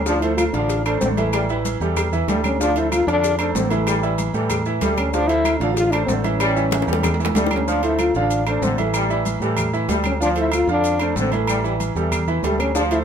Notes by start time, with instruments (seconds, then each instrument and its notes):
Already playing: fingered electric bass D2
0.06 grand piano F3 F4 F5, trombone section F3, french horn D4, cowbell, high conga, maracas
0.22 grand piano A3 A4 C5, french horn E4, high conga, low agogo, maracas
0.37 french horn F4, cowbell, high conga, low timbale, low agogo, claves, maracas
0.53 fingered electric bass A1, trombone section D3, grand piano F3 F4 F5, french horn D4, cowbell, maracas
0.69 cowbell, high conga, low agogo, maracas
0.85 grand piano A3 A4 C5, french horn D4, cowbell, high conga, low agogo, claves, maracas
1.01 fingered electric bass A1, trombone section D3, grand piano A3 A4 C5, french horn C4, cowbell, high conga, low timbale, maracas
1.17 grand piano E3 E4 E5, french horn A3, cowbell, high conga, low agogo, maracas
1.33 trombone section G3, cowbell, high conga, low agogo, claves, maracas
1.49 grand piano E3 E4 E5, maracas
1.65 cowbell, high conga, low timbale, low agogo, maracas
1.80 fingered electric bass E2, trombone section E3, grand piano G3 G4 A4, high conga, maracas
1.96 cowbell, high conga, low conga, low agogo, claves, maracas
2.12 grand piano E3 E4 E5, high conga, low conga, maracas
2.28 fingered electric bass D2, trombone section G3, grand piano G3 G4 A4, french horn A3, cowbell, high conga, low timbale, low agogo, maracas
2.44 french horn C#4, high conga, low agogo, claves, maracas
2.60 grand piano F3 F4 F5, trombone section F3, french horn D4, cowbell, high conga, maracas
2.76 grand piano A3 A4 C5, french horn E4, high conga, low agogo, maracas
2.92 french horn F4, cowbell, high conga, low timbale, low agogo, claves, maracas
3.07 fingered electric bass F2, trombone section D3, grand piano F3 F4 F5, french horn D4, cowbell, high conga, maracas
3.23 cowbell, high conga, low agogo, maracas
3.39 grand piano A3 A4 C5, french horn D4, cowbell, low agogo, claves, maracas
3.55 fingered electric bass A1, trombone section D3, grand piano A3 A4 C5, french horn C4, cowbell, high conga, low timbale, maracas
3.70 grand piano E3 E4 E5, french horn A3, cowbell, high conga, low agogo, maracas
3.87 trombone section G3, cowbell, high conga, low agogo, claves, maracas
4.03 grand piano E3 E4 E5, maracas
4.18 cowbell, high conga, low timbale, low agogo, maracas
4.33 fingered electric bass A2, trombone section E3, grand piano G3 G4 A4, maracas
4.50 cowbell, high conga, low conga, low agogo, claves, maracas
4.65 grand piano E3 E4 E5, high conga, maracas
4.81 fingered electric bass D2, trombone section G3, grand piano G3 G4 A4, french horn A3, cowbell, high conga, low timbale, low agogo, maracas
4.96 french horn C#4, high conga, low agogo, claves, maracas
5.12 trombone section F3, grand piano F3 F4 F5, french horn D4, cowbell, high conga, maracas
5.28 grand piano A3 A4 C5, french horn E4, high conga, low agogo, maracas
5.44 cowbell, high conga, low timbale, low agogo, claves, maracas
5.59 fingered electric bass A1, trombone section D3, grand piano F3 F4 F5, french horn D4, cowbell, high conga, maracas
5.74 french horn F4, cowbell, high conga, low agogo, maracas
5.91 grand piano A3 A4 C5, french horn D4, cowbell, high conga, low agogo, claves, maracas
6.06 fingered electric bass A1, trombone section D3, grand piano A3 A4 C5, french horn C4, cowbell, high conga, low timbale, maracas
6.23 grand piano E3 E4 E5, french horn C#4, cowbell, high conga, low agogo, maracas
6.39 trombone section G3, cowbell, high conga, low agogo, claves, maracas
6.56 grand piano E3 E4 E5, high conga, maracas
6.71 cowbell, high bongo, high conga, high timbale, low agogo, maracas
6.82 high bongo, high timbale
6.87 fingered electric bass E2, trombone section E3, grand piano G3 G4 A4, maracas
6.93 high bongo, low timbale
7.03 cowbell, high bongo, high conga, low conga, low agogo, claves, maracas
7.14 low timbale
7.19 grand piano E3 E4 E5, high conga, maracas
7.25 low bongo, low timbale
7.35 fingered electric bass D2, trombone section G3, grand piano G3 G4 A4, french horn A3, cowbell, low bongo, high conga, low timbale, low agogo, maracas
7.46 low bongo
7.51 french horn C#4, high conga, low agogo, claves, maracas
7.56 low bongo, low timbale
7.67 trombone section F3, grand piano F3 F4 F5, french horn D4, high conga, maracas
7.83 grand piano A3 A4 C5, french horn E4, low agogo, maracas
7.99 french horn F4, high conga, low timbale, low agogo, claves, maracas
8.14 fingered electric bass A1, trombone section D3, grand piano F3 F4 F5, french horn D4, high conga, maracas
8.30 high conga, low agogo, maracas
8.46 grand piano A3 A4 C5, french horn D4, high conga, low agogo, claves, maracas
8.62 fingered electric bass A1, trombone section D3, grand piano A3 A4 C5, french horn C4, high conga, low timbale, maracas
8.78 grand piano E3 E4 E5, french horn A3, high conga, low agogo, maracas
8.94 trombone section G3, high conga, low agogo, claves, maracas
9.10 grand piano E3 E4 E5, high conga, maracas
9.25 high conga, low timbale, low agogo, maracas
9.40 fingered electric bass A2, trombone section E3, grand piano G3 G4 A4, high conga, maracas
9.57 high conga, low conga, low agogo, claves, maracas
9.73 grand piano E3 E4 E5, maracas
9.88 fingered electric bass D2, grand piano G3 G4 A4, trombone section G3, french horn A3, high conga, low timbale, low agogo, maracas
10.04 french horn C#4, high conga, low agogo, claves, maracas
10.20 grand piano F3 F4 F5, trombone section F3, french horn D4, maracas
10.36 grand piano A3 A4 C5, french horn E4, high conga, low agogo, maracas
10.52 french horn F4, high conga, low timbale, low agogo, claves, maracas
10.67 fingered electric bass F2, trombone section D3, grand piano F3 F4 F5, french horn D4, high conga, maracas
10.84 high conga, low agogo, maracas
10.99 grand piano A3 A4 C5, french horn D4, high conga, low agogo, claves, maracas
11.16 fingered electric bass A1, trombone section D3, grand piano A3 A4 C5, french horn C4, high conga, low timbale, maracas
11.32 grand piano E3 E4 E5, french horn A3, high conga, low agogo, maracas
11.47 trombone section G3, high conga, low agogo, claves, maracas
11.64 grand piano E3 E4 E5, high conga, maracas
11.80 high conga, low timbale, low agogo, maracas
11.95 fingered electric bass E2, trombone section E3, grand piano G3 G4 A4, maracas
12.12 high conga, low conga, low agogo, claves, maracas
12.28 grand piano E3 E4 E5, high conga, low conga, maracas
12.43 fingered electric bass D2, grand piano G3 G4 A4, trombone section G3, french horn A3, high conga, low timbale, low agogo, maracas
12.58 french horn C#4, high conga, low agogo, claves, maracas
12.75 grand piano F3 F4 F5, trombone section F3, french horn D4, cowbell, high conga, maracas
12.90 grand piano A3 A4 C5, french horn E4, high conga, low agogo, maracas